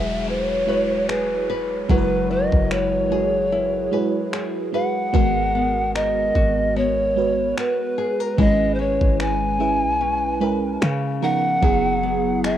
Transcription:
Already playing: E1 F#3 G#3 E4 F#4 G#4 B4 E5, downlifter
0.28 E4 C5
0.45 C#5
0.67 G#3 E4 F#4 B4 C#5
1.09 G#4 B4, finger snap
1.50 B4
1.89 F#1 F#3 G#3 E4 F#4 A#4 B4, kick
1.98 B4
2.31 E4 D#5
2.52 F#1, kick
2.71 B4 C#5, finger snap
3.10 G#3 E4 F#4 G#4
3.52 E4
3.91 G#3 E4 F#4 G#4 B4
4.33 G#4, finger snap
4.72 G#3 E4 F#4 G#4 B4 F#5
5.13 G#1 G#3 B3 F#4 A#4, kick
5.55 B3
5.95 A#4 D#5, finger snap
6.35 G#1 F#4, kick
6.76 B3 C#5
7.16 G#3 B3 F#4 B4
7.57 F#4 B4, finger snap
7.98 G#4
8.20 A#4
8.37 G#1 G#3 C#4 E4 B4 D#5, kick
8.75 C5
8.79 C#4 C#5
9.01 G#1, kick
9.20 B4 G#5, finger snap
9.59 G#3 C#4 E4 B4
9.82 B1
10.01 C#4
10.40 G#3 C#4 E4 A#4 B4
10.82 C#3, finger snap
11.21 F3 B3 D#4 A#4 F#5
11.62 F#1 F#3 B3 E4 G#4, kick
12.03 B3
12.44 G#4 E5, finger snap

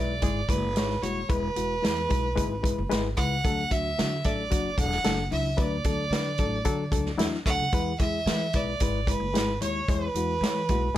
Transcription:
Already playing: B1 G#3 E4 B4 D5
0.22 G#1 G#3 E4 G#4, kick, closed hi-hat
0.48 F#1 G#3 E4 B4 D5, kick, closed hi-hat
0.75 G#1 G#3 E4 C#5, snare, closed hi-hat
0.90 snare
1.02 D#1 G#3 E4 F#4 C#5, closed hi-hat
1.29 E1 G#3 E4 B4, kick, closed hi-hat
1.56 E1 G#3 E4 F#4, closed hi-hat
1.82 E2 G#3 E4 B4, snare, closed hi-hat
2.09 B1 G#3 E4 B4, kick, closed hi-hat
2.35 G#1 G#3 E4 B4, kick, closed hi-hat
2.63 G#3 E4 B4, kick, closed hi-hat
2.78 F#1
2.89 G#1 G#3 E4 B4, snare, closed hi-hat
3.17 C#2 G#3 E4 B4 F#5, kick, closed hi-hat
3.44 D2 F#3 D4 A4, kick, closed hi-hat
3.70 D2 F#3 D4 F#4 E5, kick, closed hi-hat
3.98 D3 F#3 D4 F#4, snare, closed hi-hat
4.24 A1 F#3 D4 A4 D5, kick, closed hi-hat
4.51 F#1 F#3 D4 F#4, kick, closed hi-hat
4.77 E1 F#3 D4 A4 F#5, kick, closed hi-hat
4.92 snare
5.04 F#1 F#3 D4 A4, snare, closed hi-hat
5.31 C#2 F#3 D4 E4 E5, open hi-hat
5.57 D2 F#3 D4 B4 D5, kick, closed hi-hat
5.84 D2 F#3 D4 A4, kick, closed hi-hat
6.10 D3 F#3 D4 B4, snare, closed hi-hat
6.38 A1 F#3 D4 A4, kick, closed hi-hat
6.65 D3 F#3 D4 A4, kick, closed hi-hat
6.91 D2 F#3 D4 A4, kick, closed hi-hat
7.06 snare
7.17 E2 F#3 D4 E4, snare, closed hi-hat
7.34 snare
7.45 D2 F#3 D4 A4 F#5, kick, closed hi-hat
7.59 C#2
7.72 E2 G#3 E4 B4, kick, closed hi-hat
7.99 E2 G#3 E4 G#4 E5, kick, closed hi-hat
8.26 E3 G#3 E4 B4, snare, closed hi-hat
8.53 B1 G#3 E4 B4 D5, kick, closed hi-hat
8.80 G#1 G#3 E4 B4, kick, closed hi-hat
9.07 G#3 E4 B4, kick, closed hi-hat
9.20 F#1
9.33 G#1 G#3 E4 B4, snare, closed hi-hat
9.61 D#2 G#3 E4 C#5, closed hi-hat
9.88 E2 G#3 E4 B4 C#5, kick, closed hi-hat
10.14 E2 G#3 E4 F#4, closed hi-hat
10.41 E3 G#3 E4 C#5, snare, closed hi-hat
10.69 B1 G#3 E4 F#4, kick, closed hi-hat
10.95 G#3

